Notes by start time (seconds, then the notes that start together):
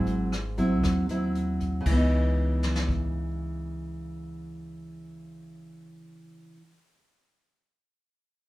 Already playing: G#2 F#3 C4 E4
0.06 G#1, closed hi-hat
0.32 cross-stick, closed hi-hat
0.58 F#3 C4 E4, kick, closed hi-hat
0.83 D#2, kick, cross-stick, closed hi-hat
1.09 F#3 C4 E4, closed hi-hat
1.35 closed hi-hat
1.60 kick, closed hi-hat
1.81 C#3
1.86 C#2 E3, kick, crash
1.91 B3
1.96 D#4
2.63 snare
2.75 snare
2.89 kick